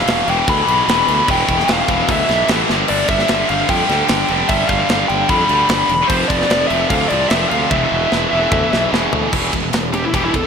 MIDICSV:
0, 0, Header, 1, 6, 480
1, 0, Start_track
1, 0, Tempo, 402414
1, 1532, Time_signature, 4, 2, 24, 8
1, 12487, End_track
2, 0, Start_track
2, 0, Title_t, "Lead electric guitar"
2, 0, Program_c, 0, 29
2, 0, Note_on_c, 0, 77, 97
2, 310, Note_off_c, 0, 77, 0
2, 359, Note_on_c, 0, 79, 93
2, 571, Note_off_c, 0, 79, 0
2, 590, Note_on_c, 0, 83, 111
2, 1064, Note_off_c, 0, 83, 0
2, 1078, Note_on_c, 0, 83, 116
2, 1511, Note_off_c, 0, 83, 0
2, 1562, Note_on_c, 0, 79, 98
2, 2039, Note_off_c, 0, 79, 0
2, 2056, Note_on_c, 0, 77, 91
2, 2480, Note_off_c, 0, 77, 0
2, 2517, Note_on_c, 0, 76, 74
2, 2949, Note_off_c, 0, 76, 0
2, 3450, Note_on_c, 0, 74, 89
2, 3671, Note_off_c, 0, 74, 0
2, 3691, Note_on_c, 0, 76, 105
2, 4133, Note_off_c, 0, 76, 0
2, 4170, Note_on_c, 0, 77, 85
2, 4410, Note_on_c, 0, 79, 98
2, 4413, Note_off_c, 0, 77, 0
2, 4862, Note_off_c, 0, 79, 0
2, 4876, Note_on_c, 0, 79, 99
2, 5324, Note_off_c, 0, 79, 0
2, 5352, Note_on_c, 0, 76, 101
2, 5580, Note_off_c, 0, 76, 0
2, 5585, Note_on_c, 0, 77, 106
2, 6063, Note_on_c, 0, 79, 109
2, 6087, Note_off_c, 0, 77, 0
2, 6315, Note_on_c, 0, 83, 104
2, 6319, Note_off_c, 0, 79, 0
2, 6763, Note_off_c, 0, 83, 0
2, 6801, Note_on_c, 0, 83, 119
2, 7246, Note_off_c, 0, 83, 0
2, 7247, Note_on_c, 0, 72, 103
2, 7485, Note_off_c, 0, 72, 0
2, 7490, Note_on_c, 0, 74, 106
2, 7950, Note_off_c, 0, 74, 0
2, 7961, Note_on_c, 0, 76, 98
2, 8202, Note_off_c, 0, 76, 0
2, 8229, Note_on_c, 0, 77, 81
2, 8452, Note_off_c, 0, 77, 0
2, 8457, Note_on_c, 0, 74, 89
2, 8691, Note_off_c, 0, 74, 0
2, 8697, Note_on_c, 0, 76, 106
2, 8929, Note_off_c, 0, 76, 0
2, 8934, Note_on_c, 0, 77, 93
2, 9194, Note_off_c, 0, 77, 0
2, 9199, Note_on_c, 0, 76, 86
2, 10597, Note_off_c, 0, 76, 0
2, 11862, Note_on_c, 0, 67, 82
2, 11975, Note_off_c, 0, 67, 0
2, 11996, Note_on_c, 0, 64, 83
2, 12102, Note_off_c, 0, 64, 0
2, 12106, Note_on_c, 0, 67, 76
2, 12218, Note_off_c, 0, 67, 0
2, 12226, Note_on_c, 0, 64, 74
2, 12339, Note_off_c, 0, 64, 0
2, 12355, Note_on_c, 0, 69, 80
2, 12464, Note_off_c, 0, 69, 0
2, 12487, End_track
3, 0, Start_track
3, 0, Title_t, "Distorted electric guitar"
3, 0, Program_c, 1, 30
3, 800, Note_on_c, 1, 52, 69
3, 821, Note_on_c, 1, 47, 69
3, 839, Note_on_c, 1, 40, 65
3, 1027, Note_off_c, 1, 40, 0
3, 1032, Note_off_c, 1, 52, 0
3, 1042, Note_off_c, 1, 47, 0
3, 2712, Note_on_c, 1, 52, 75
3, 2731, Note_on_c, 1, 47, 70
3, 2749, Note_on_c, 1, 40, 60
3, 2945, Note_off_c, 1, 52, 0
3, 2946, Note_off_c, 1, 40, 0
3, 2954, Note_off_c, 1, 47, 0
3, 4387, Note_on_c, 1, 43, 77
3, 4415, Note_on_c, 1, 50, 96
3, 4434, Note_on_c, 1, 55, 93
3, 4610, Note_off_c, 1, 55, 0
3, 4620, Note_off_c, 1, 43, 0
3, 4632, Note_off_c, 1, 50, 0
3, 6312, Note_on_c, 1, 43, 90
3, 6333, Note_on_c, 1, 50, 80
3, 6355, Note_on_c, 1, 55, 85
3, 6539, Note_off_c, 1, 55, 0
3, 6541, Note_off_c, 1, 43, 0
3, 6552, Note_off_c, 1, 50, 0
3, 8454, Note_on_c, 1, 53, 85
3, 8478, Note_on_c, 1, 48, 71
3, 8493, Note_on_c, 1, 41, 69
3, 8675, Note_off_c, 1, 41, 0
3, 8692, Note_off_c, 1, 53, 0
3, 8704, Note_off_c, 1, 48, 0
3, 10398, Note_on_c, 1, 52, 70
3, 10422, Note_on_c, 1, 47, 65
3, 10439, Note_on_c, 1, 40, 61
3, 10611, Note_off_c, 1, 40, 0
3, 10628, Note_off_c, 1, 52, 0
3, 10632, Note_off_c, 1, 47, 0
3, 12487, End_track
4, 0, Start_track
4, 0, Title_t, "Distorted electric guitar"
4, 0, Program_c, 2, 30
4, 0, Note_on_c, 2, 40, 83
4, 0, Note_on_c, 2, 47, 100
4, 0, Note_on_c, 2, 52, 110
4, 322, Note_off_c, 2, 47, 0
4, 324, Note_off_c, 2, 52, 0
4, 329, Note_on_c, 2, 52, 83
4, 351, Note_on_c, 2, 47, 79
4, 360, Note_off_c, 2, 40, 0
4, 365, Note_on_c, 2, 40, 71
4, 1035, Note_off_c, 2, 52, 0
4, 1039, Note_off_c, 2, 40, 0
4, 1046, Note_off_c, 2, 47, 0
4, 1053, Note_on_c, 2, 40, 80
4, 1073, Note_on_c, 2, 47, 81
4, 1090, Note_on_c, 2, 52, 93
4, 1517, Note_off_c, 2, 40, 0
4, 1527, Note_off_c, 2, 47, 0
4, 1536, Note_off_c, 2, 52, 0
4, 1536, Note_on_c, 2, 40, 96
4, 1553, Note_on_c, 2, 47, 102
4, 1568, Note_on_c, 2, 52, 105
4, 2235, Note_off_c, 2, 52, 0
4, 2237, Note_off_c, 2, 40, 0
4, 2246, Note_off_c, 2, 47, 0
4, 2249, Note_on_c, 2, 52, 77
4, 2268, Note_on_c, 2, 47, 80
4, 2286, Note_on_c, 2, 40, 77
4, 2949, Note_off_c, 2, 40, 0
4, 2953, Note_off_c, 2, 52, 0
4, 2962, Note_off_c, 2, 47, 0
4, 2963, Note_on_c, 2, 40, 72
4, 2988, Note_on_c, 2, 47, 73
4, 3005, Note_on_c, 2, 52, 86
4, 3190, Note_off_c, 2, 40, 0
4, 3202, Note_off_c, 2, 47, 0
4, 3211, Note_off_c, 2, 52, 0
4, 3214, Note_on_c, 2, 43, 88
4, 3235, Note_on_c, 2, 50, 96
4, 3251, Note_on_c, 2, 55, 99
4, 3918, Note_off_c, 2, 43, 0
4, 3923, Note_on_c, 2, 43, 74
4, 3924, Note_off_c, 2, 50, 0
4, 3949, Note_on_c, 2, 50, 87
4, 3957, Note_off_c, 2, 55, 0
4, 3962, Note_on_c, 2, 55, 83
4, 4628, Note_off_c, 2, 43, 0
4, 4629, Note_off_c, 2, 55, 0
4, 4641, Note_off_c, 2, 50, 0
4, 4644, Note_on_c, 2, 55, 86
4, 4664, Note_on_c, 2, 50, 87
4, 4682, Note_on_c, 2, 43, 75
4, 5099, Note_off_c, 2, 43, 0
4, 5108, Note_off_c, 2, 55, 0
4, 5113, Note_on_c, 2, 43, 91
4, 5118, Note_off_c, 2, 50, 0
4, 5131, Note_on_c, 2, 50, 102
4, 5148, Note_on_c, 2, 55, 105
4, 5816, Note_off_c, 2, 43, 0
4, 5830, Note_on_c, 2, 43, 84
4, 5831, Note_off_c, 2, 50, 0
4, 5839, Note_off_c, 2, 55, 0
4, 5847, Note_on_c, 2, 50, 91
4, 5865, Note_on_c, 2, 55, 97
4, 6539, Note_off_c, 2, 55, 0
4, 6540, Note_off_c, 2, 43, 0
4, 6549, Note_off_c, 2, 50, 0
4, 6553, Note_on_c, 2, 55, 90
4, 6570, Note_on_c, 2, 50, 91
4, 6593, Note_on_c, 2, 43, 70
4, 7022, Note_off_c, 2, 55, 0
4, 7030, Note_off_c, 2, 50, 0
4, 7041, Note_off_c, 2, 43, 0
4, 7257, Note_on_c, 2, 41, 98
4, 7277, Note_on_c, 2, 48, 104
4, 7297, Note_on_c, 2, 53, 106
4, 7972, Note_off_c, 2, 53, 0
4, 7974, Note_off_c, 2, 41, 0
4, 7983, Note_off_c, 2, 48, 0
4, 7986, Note_on_c, 2, 53, 91
4, 8006, Note_on_c, 2, 48, 88
4, 8021, Note_on_c, 2, 41, 68
4, 8695, Note_off_c, 2, 41, 0
4, 8698, Note_off_c, 2, 53, 0
4, 8708, Note_off_c, 2, 48, 0
4, 8710, Note_on_c, 2, 41, 72
4, 8732, Note_on_c, 2, 48, 81
4, 8745, Note_on_c, 2, 53, 77
4, 9181, Note_off_c, 2, 41, 0
4, 9191, Note_on_c, 2, 40, 94
4, 9192, Note_off_c, 2, 48, 0
4, 9198, Note_off_c, 2, 53, 0
4, 9206, Note_on_c, 2, 47, 101
4, 9228, Note_on_c, 2, 52, 102
4, 9899, Note_off_c, 2, 52, 0
4, 9903, Note_off_c, 2, 40, 0
4, 9910, Note_off_c, 2, 47, 0
4, 9913, Note_on_c, 2, 52, 97
4, 9938, Note_on_c, 2, 47, 80
4, 9954, Note_on_c, 2, 40, 72
4, 10625, Note_off_c, 2, 40, 0
4, 10626, Note_off_c, 2, 52, 0
4, 10639, Note_off_c, 2, 47, 0
4, 10639, Note_on_c, 2, 40, 79
4, 10656, Note_on_c, 2, 47, 81
4, 10675, Note_on_c, 2, 52, 87
4, 11110, Note_off_c, 2, 40, 0
4, 11119, Note_off_c, 2, 47, 0
4, 11123, Note_on_c, 2, 40, 93
4, 11124, Note_off_c, 2, 52, 0
4, 11132, Note_on_c, 2, 47, 84
4, 11138, Note_on_c, 2, 52, 99
4, 11352, Note_off_c, 2, 40, 0
4, 11357, Note_off_c, 2, 47, 0
4, 11360, Note_off_c, 2, 52, 0
4, 11369, Note_on_c, 2, 47, 59
4, 11370, Note_on_c, 2, 40, 54
4, 11473, Note_off_c, 2, 47, 0
4, 11480, Note_off_c, 2, 40, 0
4, 11487, Note_on_c, 2, 47, 82
4, 11494, Note_on_c, 2, 40, 66
4, 11589, Note_off_c, 2, 40, 0
4, 11593, Note_off_c, 2, 47, 0
4, 11604, Note_on_c, 2, 40, 68
4, 11608, Note_on_c, 2, 47, 82
4, 11825, Note_off_c, 2, 40, 0
4, 11827, Note_off_c, 2, 47, 0
4, 11843, Note_on_c, 2, 47, 73
4, 11849, Note_on_c, 2, 40, 58
4, 11961, Note_off_c, 2, 47, 0
4, 11967, Note_off_c, 2, 40, 0
4, 11975, Note_on_c, 2, 47, 72
4, 11981, Note_on_c, 2, 40, 53
4, 12080, Note_off_c, 2, 40, 0
4, 12085, Note_off_c, 2, 47, 0
4, 12094, Note_on_c, 2, 40, 65
4, 12100, Note_on_c, 2, 47, 72
4, 12110, Note_on_c, 2, 52, 91
4, 12322, Note_off_c, 2, 40, 0
4, 12325, Note_off_c, 2, 47, 0
4, 12330, Note_off_c, 2, 52, 0
4, 12339, Note_on_c, 2, 40, 65
4, 12340, Note_on_c, 2, 47, 80
4, 12434, Note_off_c, 2, 40, 0
4, 12434, Note_off_c, 2, 47, 0
4, 12448, Note_on_c, 2, 40, 64
4, 12448, Note_on_c, 2, 47, 76
4, 12487, Note_off_c, 2, 40, 0
4, 12487, Note_off_c, 2, 47, 0
4, 12487, End_track
5, 0, Start_track
5, 0, Title_t, "Fingered electric bass"
5, 0, Program_c, 3, 33
5, 90, Note_on_c, 3, 28, 92
5, 242, Note_off_c, 3, 28, 0
5, 330, Note_on_c, 3, 28, 101
5, 482, Note_off_c, 3, 28, 0
5, 569, Note_on_c, 3, 38, 106
5, 721, Note_off_c, 3, 38, 0
5, 806, Note_on_c, 3, 35, 85
5, 959, Note_off_c, 3, 35, 0
5, 1052, Note_on_c, 3, 28, 98
5, 1203, Note_off_c, 3, 28, 0
5, 1290, Note_on_c, 3, 38, 87
5, 1441, Note_off_c, 3, 38, 0
5, 1532, Note_on_c, 3, 28, 92
5, 1683, Note_off_c, 3, 28, 0
5, 1775, Note_on_c, 3, 28, 99
5, 1924, Note_off_c, 3, 28, 0
5, 2010, Note_on_c, 3, 28, 90
5, 2161, Note_off_c, 3, 28, 0
5, 2247, Note_on_c, 3, 28, 106
5, 2398, Note_off_c, 3, 28, 0
5, 2490, Note_on_c, 3, 38, 95
5, 2640, Note_off_c, 3, 38, 0
5, 2736, Note_on_c, 3, 35, 89
5, 2884, Note_off_c, 3, 35, 0
5, 2975, Note_on_c, 3, 33, 97
5, 3123, Note_off_c, 3, 33, 0
5, 3218, Note_on_c, 3, 31, 83
5, 3365, Note_off_c, 3, 31, 0
5, 3463, Note_on_c, 3, 31, 95
5, 3608, Note_off_c, 3, 31, 0
5, 3684, Note_on_c, 3, 31, 100
5, 3835, Note_off_c, 3, 31, 0
5, 3935, Note_on_c, 3, 31, 86
5, 4083, Note_off_c, 3, 31, 0
5, 4174, Note_on_c, 3, 31, 99
5, 4322, Note_off_c, 3, 31, 0
5, 4403, Note_on_c, 3, 41, 88
5, 4554, Note_off_c, 3, 41, 0
5, 4645, Note_on_c, 3, 38, 80
5, 4795, Note_off_c, 3, 38, 0
5, 4889, Note_on_c, 3, 31, 92
5, 5038, Note_off_c, 3, 31, 0
5, 5122, Note_on_c, 3, 29, 88
5, 5273, Note_off_c, 3, 29, 0
5, 5363, Note_on_c, 3, 31, 96
5, 5513, Note_off_c, 3, 31, 0
5, 5598, Note_on_c, 3, 31, 90
5, 5750, Note_off_c, 3, 31, 0
5, 5835, Note_on_c, 3, 31, 91
5, 5988, Note_off_c, 3, 31, 0
5, 6084, Note_on_c, 3, 31, 97
5, 6234, Note_off_c, 3, 31, 0
5, 6312, Note_on_c, 3, 41, 89
5, 6465, Note_off_c, 3, 41, 0
5, 6554, Note_on_c, 3, 38, 92
5, 6707, Note_off_c, 3, 38, 0
5, 6790, Note_on_c, 3, 31, 97
5, 6944, Note_off_c, 3, 31, 0
5, 7029, Note_on_c, 3, 28, 91
5, 7183, Note_off_c, 3, 28, 0
5, 7273, Note_on_c, 3, 29, 96
5, 7426, Note_off_c, 3, 29, 0
5, 7513, Note_on_c, 3, 29, 99
5, 7666, Note_off_c, 3, 29, 0
5, 7755, Note_on_c, 3, 29, 86
5, 7907, Note_off_c, 3, 29, 0
5, 8001, Note_on_c, 3, 29, 99
5, 8152, Note_off_c, 3, 29, 0
5, 8236, Note_on_c, 3, 38, 108
5, 8388, Note_off_c, 3, 38, 0
5, 8484, Note_on_c, 3, 36, 88
5, 8634, Note_off_c, 3, 36, 0
5, 8719, Note_on_c, 3, 29, 99
5, 8871, Note_off_c, 3, 29, 0
5, 8962, Note_on_c, 3, 38, 87
5, 9113, Note_off_c, 3, 38, 0
5, 9202, Note_on_c, 3, 28, 86
5, 9352, Note_off_c, 3, 28, 0
5, 9444, Note_on_c, 3, 28, 96
5, 9595, Note_off_c, 3, 28, 0
5, 9690, Note_on_c, 3, 28, 88
5, 9839, Note_off_c, 3, 28, 0
5, 9933, Note_on_c, 3, 28, 94
5, 10081, Note_off_c, 3, 28, 0
5, 10161, Note_on_c, 3, 38, 95
5, 10313, Note_off_c, 3, 38, 0
5, 10410, Note_on_c, 3, 35, 77
5, 10560, Note_off_c, 3, 35, 0
5, 10649, Note_on_c, 3, 28, 91
5, 10800, Note_off_c, 3, 28, 0
5, 10894, Note_on_c, 3, 38, 86
5, 11044, Note_off_c, 3, 38, 0
5, 11127, Note_on_c, 3, 28, 84
5, 11316, Note_off_c, 3, 28, 0
5, 11371, Note_on_c, 3, 28, 85
5, 11559, Note_off_c, 3, 28, 0
5, 11616, Note_on_c, 3, 28, 72
5, 11992, Note_off_c, 3, 28, 0
5, 12092, Note_on_c, 3, 28, 95
5, 12282, Note_off_c, 3, 28, 0
5, 12335, Note_on_c, 3, 28, 75
5, 12487, Note_off_c, 3, 28, 0
5, 12487, End_track
6, 0, Start_track
6, 0, Title_t, "Drums"
6, 90, Note_on_c, 9, 49, 88
6, 103, Note_on_c, 9, 38, 112
6, 209, Note_off_c, 9, 49, 0
6, 222, Note_off_c, 9, 38, 0
6, 330, Note_on_c, 9, 49, 67
6, 449, Note_off_c, 9, 49, 0
6, 569, Note_on_c, 9, 49, 87
6, 571, Note_on_c, 9, 36, 122
6, 688, Note_off_c, 9, 49, 0
6, 691, Note_off_c, 9, 36, 0
6, 814, Note_on_c, 9, 49, 75
6, 934, Note_off_c, 9, 49, 0
6, 1056, Note_on_c, 9, 49, 84
6, 1069, Note_on_c, 9, 38, 110
6, 1175, Note_off_c, 9, 49, 0
6, 1188, Note_off_c, 9, 38, 0
6, 1291, Note_on_c, 9, 49, 64
6, 1410, Note_off_c, 9, 49, 0
6, 1532, Note_on_c, 9, 36, 117
6, 1532, Note_on_c, 9, 49, 90
6, 1651, Note_off_c, 9, 36, 0
6, 1652, Note_off_c, 9, 49, 0
6, 1772, Note_on_c, 9, 36, 92
6, 1775, Note_on_c, 9, 49, 62
6, 1892, Note_off_c, 9, 36, 0
6, 1895, Note_off_c, 9, 49, 0
6, 1905, Note_on_c, 9, 38, 33
6, 2005, Note_on_c, 9, 49, 83
6, 2018, Note_off_c, 9, 38, 0
6, 2018, Note_on_c, 9, 38, 110
6, 2124, Note_off_c, 9, 49, 0
6, 2138, Note_off_c, 9, 38, 0
6, 2244, Note_on_c, 9, 49, 70
6, 2248, Note_on_c, 9, 36, 89
6, 2363, Note_off_c, 9, 49, 0
6, 2367, Note_off_c, 9, 36, 0
6, 2485, Note_on_c, 9, 49, 99
6, 2489, Note_on_c, 9, 36, 122
6, 2604, Note_off_c, 9, 49, 0
6, 2608, Note_off_c, 9, 36, 0
6, 2727, Note_on_c, 9, 49, 67
6, 2740, Note_on_c, 9, 38, 32
6, 2847, Note_off_c, 9, 49, 0
6, 2860, Note_off_c, 9, 38, 0
6, 2961, Note_on_c, 9, 49, 93
6, 2975, Note_on_c, 9, 38, 110
6, 3081, Note_off_c, 9, 49, 0
6, 3094, Note_off_c, 9, 38, 0
6, 3214, Note_on_c, 9, 38, 70
6, 3333, Note_off_c, 9, 38, 0
6, 3436, Note_on_c, 9, 49, 107
6, 3555, Note_off_c, 9, 49, 0
6, 3671, Note_on_c, 9, 49, 70
6, 3682, Note_on_c, 9, 36, 95
6, 3790, Note_off_c, 9, 49, 0
6, 3801, Note_off_c, 9, 36, 0
6, 3805, Note_on_c, 9, 38, 39
6, 3914, Note_on_c, 9, 49, 91
6, 3925, Note_off_c, 9, 38, 0
6, 3927, Note_on_c, 9, 38, 109
6, 4034, Note_off_c, 9, 49, 0
6, 4047, Note_off_c, 9, 38, 0
6, 4160, Note_on_c, 9, 49, 68
6, 4280, Note_off_c, 9, 49, 0
6, 4395, Note_on_c, 9, 49, 91
6, 4401, Note_on_c, 9, 36, 120
6, 4514, Note_off_c, 9, 49, 0
6, 4520, Note_off_c, 9, 36, 0
6, 4642, Note_on_c, 9, 49, 70
6, 4655, Note_on_c, 9, 38, 36
6, 4761, Note_off_c, 9, 49, 0
6, 4774, Note_off_c, 9, 38, 0
6, 4870, Note_on_c, 9, 49, 88
6, 4883, Note_on_c, 9, 38, 124
6, 4990, Note_off_c, 9, 49, 0
6, 5003, Note_off_c, 9, 38, 0
6, 5109, Note_on_c, 9, 49, 64
6, 5229, Note_off_c, 9, 49, 0
6, 5351, Note_on_c, 9, 49, 100
6, 5360, Note_on_c, 9, 36, 127
6, 5470, Note_off_c, 9, 49, 0
6, 5479, Note_off_c, 9, 36, 0
6, 5588, Note_on_c, 9, 49, 59
6, 5597, Note_on_c, 9, 36, 96
6, 5707, Note_off_c, 9, 49, 0
6, 5716, Note_off_c, 9, 36, 0
6, 5830, Note_on_c, 9, 49, 69
6, 5843, Note_on_c, 9, 38, 121
6, 5949, Note_off_c, 9, 49, 0
6, 5962, Note_off_c, 9, 38, 0
6, 6076, Note_on_c, 9, 49, 57
6, 6196, Note_off_c, 9, 49, 0
6, 6307, Note_on_c, 9, 49, 80
6, 6313, Note_on_c, 9, 36, 121
6, 6426, Note_off_c, 9, 49, 0
6, 6432, Note_off_c, 9, 36, 0
6, 6550, Note_on_c, 9, 49, 70
6, 6669, Note_off_c, 9, 49, 0
6, 6784, Note_on_c, 9, 49, 93
6, 6797, Note_on_c, 9, 38, 121
6, 6903, Note_off_c, 9, 49, 0
6, 6916, Note_off_c, 9, 38, 0
6, 7029, Note_on_c, 9, 49, 65
6, 7149, Note_off_c, 9, 49, 0
6, 7273, Note_on_c, 9, 36, 122
6, 7274, Note_on_c, 9, 49, 101
6, 7392, Note_off_c, 9, 36, 0
6, 7393, Note_off_c, 9, 49, 0
6, 7515, Note_on_c, 9, 36, 96
6, 7523, Note_on_c, 9, 49, 76
6, 7635, Note_off_c, 9, 36, 0
6, 7642, Note_off_c, 9, 49, 0
6, 7653, Note_on_c, 9, 38, 37
6, 7753, Note_on_c, 9, 49, 77
6, 7766, Note_off_c, 9, 38, 0
6, 7766, Note_on_c, 9, 38, 112
6, 7872, Note_off_c, 9, 49, 0
6, 7885, Note_off_c, 9, 38, 0
6, 7993, Note_on_c, 9, 49, 67
6, 8113, Note_off_c, 9, 49, 0
6, 8233, Note_on_c, 9, 36, 127
6, 8233, Note_on_c, 9, 49, 88
6, 8352, Note_off_c, 9, 36, 0
6, 8352, Note_off_c, 9, 49, 0
6, 8472, Note_on_c, 9, 49, 68
6, 8591, Note_off_c, 9, 49, 0
6, 8707, Note_on_c, 9, 49, 86
6, 8720, Note_on_c, 9, 38, 109
6, 8826, Note_off_c, 9, 49, 0
6, 8839, Note_off_c, 9, 38, 0
6, 8959, Note_on_c, 9, 49, 68
6, 9078, Note_off_c, 9, 49, 0
6, 9196, Note_on_c, 9, 48, 79
6, 9197, Note_on_c, 9, 36, 127
6, 9315, Note_off_c, 9, 48, 0
6, 9316, Note_off_c, 9, 36, 0
6, 9686, Note_on_c, 9, 38, 73
6, 9805, Note_off_c, 9, 38, 0
6, 10160, Note_on_c, 9, 36, 127
6, 10162, Note_on_c, 9, 45, 95
6, 10279, Note_off_c, 9, 36, 0
6, 10281, Note_off_c, 9, 45, 0
6, 10417, Note_on_c, 9, 38, 81
6, 10536, Note_off_c, 9, 38, 0
6, 10662, Note_on_c, 9, 38, 101
6, 10782, Note_off_c, 9, 38, 0
6, 10888, Note_on_c, 9, 43, 101
6, 11008, Note_off_c, 9, 43, 0
6, 11126, Note_on_c, 9, 57, 125
6, 11128, Note_on_c, 9, 36, 123
6, 11245, Note_off_c, 9, 57, 0
6, 11247, Note_off_c, 9, 36, 0
6, 11369, Note_on_c, 9, 36, 82
6, 11373, Note_on_c, 9, 51, 71
6, 11488, Note_off_c, 9, 36, 0
6, 11492, Note_off_c, 9, 51, 0
6, 11606, Note_on_c, 9, 51, 101
6, 11619, Note_on_c, 9, 38, 96
6, 11725, Note_off_c, 9, 51, 0
6, 11738, Note_off_c, 9, 38, 0
6, 11850, Note_on_c, 9, 51, 80
6, 11969, Note_off_c, 9, 51, 0
6, 12092, Note_on_c, 9, 36, 107
6, 12093, Note_on_c, 9, 51, 92
6, 12212, Note_off_c, 9, 36, 0
6, 12212, Note_off_c, 9, 51, 0
6, 12334, Note_on_c, 9, 36, 85
6, 12334, Note_on_c, 9, 51, 71
6, 12453, Note_off_c, 9, 36, 0
6, 12454, Note_off_c, 9, 51, 0
6, 12487, End_track
0, 0, End_of_file